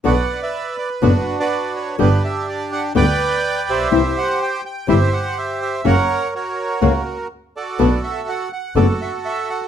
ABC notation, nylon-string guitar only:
X:1
M:4/4
L:1/8
Q:1/4=124
K:Bm
V:1 name="Nylon-string guitar"
[B,,D,B,DF] z3 [B,,D,B,DF] z3 | [B,,D,G,B,G] z3 [B,,D,G,B,G] z3 | [=C,E,G,=CE] z3 [C,E,G,CE] z3 | [C,F,^A,CF] z3 [C,F,A,CF] z3 |
[B,,D,A,B,F] z3 [B,,D,A,B,F] z3 |]